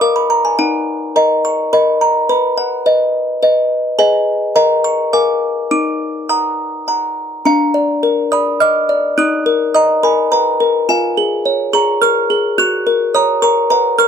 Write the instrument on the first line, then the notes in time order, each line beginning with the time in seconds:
music box
0.01 A#4 F5 D6
0.16 B5
0.30 A#5
0.45 G#5
0.59 D#4 F#5
1.16 A#4 D#5 A#5
1.45 C#6
1.73 A#4 D#5 B5
2.01 A#5
2.29 B4 B5
2.57 F#5
2.86 B4 D#5
3.42 B4 D#5
3.99 G#4 B4 D#5 G#5
4.56 A#4 D#5 F#5 A#5
4.84 C#6
5.13 A#4 F5 G#5 D6
5.71 D#4 D6
6.29 F#5 A#5 D#6
6.88 F#5 A#5
7.45 D4 F5 A#5
7.74 D5
8.03 A#4
8.32 D5 B5 D#6
8.60 D#5 D6 F6
8.89 D5
9.18 D#4 D#6 F#6
9.46 A#4
9.74 D#5 A#5 D#6
10.03 A#4 G#5 B5
10.32 B4 F#5 A#5
10.60 A#4
10.89 F4 F5 G#5
11.17 G#4
11.45 C#5
11.73 G#4 A#5 C#6
12.02 A#4 C#6 F6
12.30 G#4
12.58 F#4 C#6 F#6
12.87 A#4
13.14 C#5 A#5 D#6
13.42 A#4 A#5 C#6
13.70 B4 F#5 A#5
13.98 A#4 C#6 F6